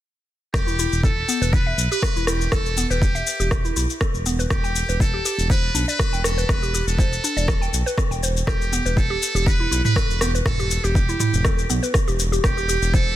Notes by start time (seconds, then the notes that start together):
0.54 E1 G4, kick, cross-stick, shaker
0.67 E4, shaker
0.79 E4, shaker
0.92 E1, shaker
1.03 A4, kick, shaker
1.28 B3, shaker
1.41 E1 B4, shaker
1.53 B4, kick, shaker
1.66 E5
1.78 B1, shaker
1.91 G4 B4, shaker
2.02 kick, cross-stick, shaker
2.16 E1 E4, shaker
2.27 E4 G4, cross-stick, shaker
2.41 shaker
2.52 E1 A4, kick, cross-stick, shaker
2.66 shaker
2.77 B3, shaker
2.90 E1 G4 B4, shaker
3.02 kick, shaker
3.15 E5, shaker
3.27 shaker
3.40 E1 G4, shaker
3.51 kick, cross-stick, shaker
3.65 E4, shaker
3.76 B1 E4, shaker
3.90 shaker
4.01 A4, kick, cross-stick, shaker
4.14 E1, shaker
4.26 B3, shaker
4.39 B4, shaker
4.50 E1 G4, kick, cross-stick, shaker
4.64 G5, shaker
4.76 shaker
4.88 E1 B4, shaker
5.00 A4, kick, shaker
5.14 G4
5.25 G4, shaker
5.38 E1, shaker
5.50 B4 C5, kick, shaker
5.74 B1 D4, shaker
5.88 B4 D5, shaker
5.99 kick, cross-stick, shaker
6.12 E1 G5, shaker
6.24 A4, cross-stick, shaker
6.38 B4, shaker
6.49 E1 B4, kick, cross-stick, shaker
6.62 G4, shaker
6.74 G4, shaker
6.87 E1 A4, shaker
6.99 C5, kick, shaker
7.13 shaker
7.24 D4, shaker
7.36 E1 D5, shaker
7.48 kick, cross-stick, shaker
7.61 G5, shaker
7.73 B1, shaker
7.86 B4, shaker
7.98 kick, cross-stick, shaker
8.11 E1 G5, shaker
8.23 C5, shaker
8.37 shaker
8.47 E1 G4 A4, kick, cross-stick, shaker
8.62 shaker
8.73 B3, shaker
8.85 E1 B4, shaker
8.97 A4, kick, shaker
9.10 G4
9.23 shaker
9.35 E1 G4, shaker
9.46 B4, kick, shaker
9.60 E4
9.71 B1 E4, shaker
9.85 B4, mid tom, shaker
9.96 A4, kick, cross-stick, shaker
10.09 E1, shaker
10.21 B3 G4, cross-stick, shaker
10.35 B4, shaker
10.46 E1 A4, kick, cross-stick, mid tom, shaker
10.59 G4, shaker
10.71 shaker
10.84 E1 G4, shaker
10.95 kick, shaker
11.09 E4, shaker
11.20 E4, mid tom, shaker
11.33 E1, shaker
11.45 A4, kick, cross-stick, shaker
11.59 shaker
11.70 B1 B3, shaker
11.83 B4, shaker
11.94 kick, cross-stick, shaker
12.08 E1 G4, shaker
12.19 shaker
12.32 G4, shaker
12.44 E1 G4, kick, cross-stick, shaker
12.57 G4, shaker
12.69 G4, shaker
12.82 E1, shaker
12.94 A4 C5, kick, shaker